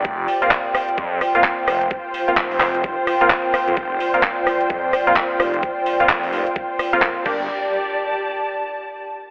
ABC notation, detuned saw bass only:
X:1
M:4/4
L:1/16
Q:"Swing 16ths" 1/4=129
K:Fmix
V:1 name="Detuned saw bass" clef=bass
F,,,2 z6 F,,2 z4 F,,,2 | z4 F,,,3 F,,,2 z6 F,, | F,,,2 z6 F,,2 z4 F,,,2 | z4 F,,,3 z4 F,,2 z G,,,2 |
z16 |]